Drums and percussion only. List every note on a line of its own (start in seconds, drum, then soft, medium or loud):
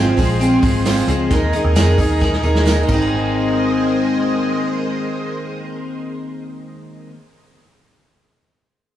0.18 kick medium
0.18 hi-hat pedal medium
0.18 open hi-hat medium
0.18 tambourine medium
0.41 hi-hat pedal medium
0.41 open hi-hat loud
0.41 tambourine medium
0.62 kick loud
0.62 hi-hat pedal medium
0.62 open hi-hat medium
0.62 tambourine medium
0.85 snare loud
0.85 hi-hat pedal medium
0.85 open hi-hat loud
0.85 tambourine loud
1.08 hi-hat pedal medium
1.08 open hi-hat medium
1.08 tambourine medium
1.31 kick loud
1.31 hi-hat pedal medium
1.31 open hi-hat medium
1.31 tambourine soft
1.53 hi-hat pedal medium
1.53 open hi-hat medium
1.53 tambourine soft
1.76 snare loud
1.76 hi-hat pedal medium
1.76 open hi-hat loud
1.76 tambourine loud
1.98 kick loud
1.98 hi-hat pedal medium
1.98 open hi-hat medium
1.98 tambourine medium
2.21 kick loud
2.21 snare medium
2.21 tambourine medium
2.33 snare medium
2.43 tambourine medium
2.55 snare medium
2.66 snare medium
2.66 tambourine loud
2.88 kick loud
2.88 crash medium
2.88 tambourine medium